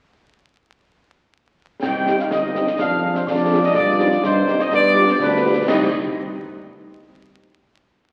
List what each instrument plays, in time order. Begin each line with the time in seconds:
1.82 tuba C2, euphonium D#4, trumpet section G5, concert bass drum, snare, crash
2.07 french horn section C4 D#4 G4, snare
2.19 trumpet section F5, snare
2.31 tuba G1, trumpet section D#5, concert bass drum, snare
2.55 french horn section C4 D#4 G4, snare
2.67 snare
2.79 tuba F2, euphonium D4, trumpet section F5, concert bass drum, snare
3.03 french horn section D4 F4 G#4
3.15 trumpet section C5, snare
3.27 tuba F2, euphonium D4, trumpet section D5, concert bass drum, snare
3.51 french horn section D4 F4 G#4
3.65 trumpet section D#5
3.75 tuba G2, euphonium F4, trumpet section D5, concert bass drum, snare
3.99 french horn section C4 D#4 G4, snare
4.12 snare
4.23 tuba G2, euphonium D#4, trumpet section C5, concert bass drum, snare
4.47 french horn section C4 D#4 G4, snare
4.59 trumpet section D#5, snare
4.72 tuba G2, euphonium B3, trumpet section D5, concert bass drum, snare
4.95 french horn section B3 F4 G4
5.08 trumpet section C5, snare
5.20 tuba D2, euphonium D4, trumpet section B4, concert bass drum, snare
5.44 french horn section B3 F4 G4
5.68 tuba C2, french horn section C4 D#4 G4, trumpet section D#5, concert bass drum, snare, crash